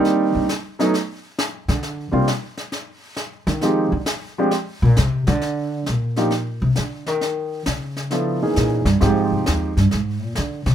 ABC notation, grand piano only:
X:1
M:4/4
L:1/8
Q:"Swing" 1/4=134
K:Bb
V:1 name="Grand piano"
[G,B,CDE]2 z [_G,A,_C_DE] z4 | z [G,B,CDF] z6 | [F,_A,CEG] z2 [F,A,CDG] z4 | [K:Eb] z3 [F,B,DEG] z4 |
z4 [F,_CD_F=A] [_F,B,_DE_A]2 z | [F,A,CEG]3 z4 z |]